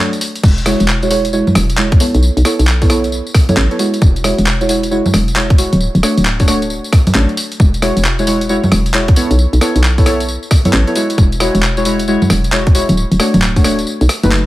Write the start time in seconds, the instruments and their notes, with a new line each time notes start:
0.00 synth stab A3 D4 F#4 C#5
0.13 closed hi-hat, tambourine
0.21 open hi-hat, tambourine
0.36 closed hi-hat, tambourine
0.44 fm bass E1, kick, crash, tambourine
0.58 closed hi-hat, tambourine
0.66 synth stab G#3 E4 F#4 C#5, cross-stick, open hi-hat, tambourine
0.80 fm bass E1, closed hi-hat, tambourine
0.88 clap, tambourine
1.03 synth stab G#3 E4 F#4 C#5, closed hi-hat, tambourine
1.11 synth stab G#3 E4 F#4 C#5, open hi-hat, tambourine
1.25 closed hi-hat, tambourine
1.33 synth stab G#3 E4 F#4 C#5, tambourine
1.47 tambourine, high conga
1.55 fm bass E1, cross-stick, open hi-hat, tambourine
1.70 closed hi-hat, tambourine
1.78 synth stab G#3 E4 F#4 C#5, clap, tambourine
1.92 kick, closed hi-hat
2.00 synth stab B3 E4 A4 C#5, open hi-hat, tambourine
2.15 fm bass B1, closed hi-hat, tambourine
2.23 tambourine
2.37 fm bass B1, closed hi-hat, tambourine
2.45 synth stab B3 E4 A4 C#5, cross-stick, open hi-hat, tambourine
2.59 fm bass B1, closed hi-hat, tambourine
2.67 clap, tambourine
2.82 synth stab B3 E4 A4 C#5, kick, open hi-hat, tambourine
2.90 synth stab B3 E4 A4 C#5, cross-stick, open hi-hat, tambourine
3.04 closed hi-hat, tambourine
3.12 tambourine
3.27 tambourine
3.34 kick, cross-stick, open hi-hat, tambourine
3.49 synth stab B3 E4 A4 C#5, closed hi-hat, tambourine, high conga
3.57 fm bass A1, clap, tambourine
3.71 synth stab B3 E4 A4 C#5, closed hi-hat
3.79 synth stab G#3 E4 F#4 C#5, open hi-hat, tambourine
3.94 closed hi-hat, tambourine
4.02 fm bass E1, kick, tambourine
4.16 closed hi-hat, tambourine
4.24 synth stab G#3 E4 F#4 C#5, cross-stick, open hi-hat, tambourine
4.38 fm bass E1, closed hi-hat, tambourine
4.47 clap, tambourine
4.61 synth stab G#3 E4 F#4 C#5, closed hi-hat, tambourine
4.69 synth stab G#3 E4 F#4 C#5, open hi-hat, tambourine
4.83 closed hi-hat, tambourine
4.91 synth stab G#3 E4 F#4 C#5, tambourine
5.06 tambourine, high conga
5.14 fm bass E1, cross-stick, open hi-hat, tambourine
5.28 closed hi-hat, tambourine
5.36 synth stab G#3 E4 F#4 C#5, clap, tambourine
5.50 kick, closed hi-hat
5.58 synth stab G#3 E4 F#4 C#5, open hi-hat, tambourine
5.73 fm bass D1, closed hi-hat, tambourine
5.81 tambourine
5.95 fm bass D1, closed hi-hat, tambourine
6.03 synth stab A3 D4 F#4 C#5, cross-stick, open hi-hat, tambourine
6.17 fm bass D1, closed hi-hat, tambourine
6.25 clap, tambourine
6.40 synth stab A3 D4 F#4 C#5, kick, open hi-hat, tambourine
6.48 synth stab A3 D4 F#4 C#5, cross-stick, open hi-hat, tambourine
6.62 closed hi-hat, tambourine
6.70 tambourine
6.84 tambourine
6.93 kick, cross-stick, open hi-hat, tambourine
7.07 closed hi-hat, tambourine, high conga
7.15 fm bass A1, synth stab A3 D4 F#4 C#5, clap, tambourine
7.29 closed hi-hat
7.37 open hi-hat, tambourine
7.52 closed hi-hat, tambourine
7.60 fm bass E1, kick, tambourine
7.74 closed hi-hat, tambourine
7.82 synth stab G#3 E4 F#4 C#5, cross-stick, open hi-hat, tambourine
7.97 fm bass E1, closed hi-hat, tambourine
8.05 clap, tambourine
8.19 synth stab G#3 E4 F#4 C#5, closed hi-hat, tambourine
8.27 synth stab G#3 E4 F#4 C#5, open hi-hat, tambourine
8.41 closed hi-hat, tambourine
8.49 synth stab G#3 E4 F#4 C#5, tambourine
8.64 tambourine, high conga
8.72 fm bass E1, cross-stick, open hi-hat, tambourine
8.86 closed hi-hat, tambourine
8.94 synth stab G#3 E4 F#4 C#5, clap, tambourine
9.08 kick, closed hi-hat
9.16 synth stab B3 E4 A4 C#5, open hi-hat, tambourine
9.31 fm bass B1, closed hi-hat, tambourine
9.39 tambourine
9.53 fm bass B1, closed hi-hat, tambourine
9.61 synth stab B3 E4 A4 C#5, cross-stick, open hi-hat, tambourine
9.75 fm bass B1, closed hi-hat, tambourine
9.84 clap, tambourine
9.98 synth stab B3 E4 A4 C#5, kick, open hi-hat, tambourine
10.06 synth stab B3 E4 A4 C#5, cross-stick, open hi-hat, tambourine
10.20 closed hi-hat, tambourine
10.28 tambourine
10.43 tambourine
10.51 kick, cross-stick, open hi-hat, tambourine
10.65 synth stab B3 E4 A4 C#5, closed hi-hat, tambourine, high conga
10.73 fm bass A1, clap, tambourine
10.87 synth stab B3 E4 A4 C#5, closed hi-hat
10.96 synth stab G#3 E4 F#4 C#5, open hi-hat, tambourine
11.10 closed hi-hat, tambourine
11.18 fm bass E1, kick, tambourine
11.32 closed hi-hat, tambourine
11.40 synth stab G#3 E4 F#4 C#5, cross-stick, open hi-hat, tambourine
11.55 fm bass E1, closed hi-hat, tambourine
11.63 clap, tambourine
11.77 synth stab G#3 E4 F#4 C#5, closed hi-hat, tambourine
11.85 synth stab G#3 E4 F#4 C#5, open hi-hat, tambourine
11.99 closed hi-hat, tambourine
12.08 synth stab G#3 E4 F#4 C#5, tambourine
12.22 tambourine, high conga
12.30 fm bass E1, cross-stick, open hi-hat, tambourine
12.44 closed hi-hat, tambourine
12.53 synth stab G#3 E4 F#4 C#5, clap, tambourine
12.67 kick, closed hi-hat
12.75 synth stab G#3 E4 F#4 C#5, open hi-hat, tambourine
12.89 fm bass D1, closed hi-hat, tambourine
12.97 tambourine
13.12 fm bass D1, closed hi-hat, tambourine
13.20 synth stab A3 D4 F#4 C#5, cross-stick, open hi-hat, tambourine
13.34 fm bass D1, closed hi-hat, tambourine, high conga
13.42 clap, tambourine
13.56 synth stab A3 D4 F#4 C#5, kick, open hi-hat, tambourine
13.64 synth stab A3 D4 F#4 C#5, cross-stick, open hi-hat, tambourine
13.79 closed hi-hat, tambourine
13.87 tambourine
14.01 fm bass B1, closed hi-hat, tambourine
14.09 cross-stick, open hi-hat, tambourine
14.23 fm bass F#1, synth stab A3 D#4 F#4 B4, closed hi-hat, tambourine, high conga
14.32 clap, tambourine